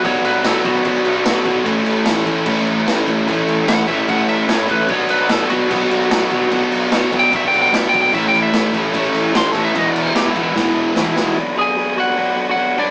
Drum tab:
CC |xxxxxxxx|xxxxxxxx|xxxxxxxx|xxxxxxxx|
SD |--o---o-|--o---o-|--o---o-|--o---o-|
BD |o--oo--o|o--oo--o|o--oo--o|o--oo--o|

CC |xxxxxxxx|xxxxxxxx|xxxx----|--------|
SD |--o---o-|--o---o-|--o-o-oo|--------|
BD |o--oo--o|o--oo--o|o--oo---|--------|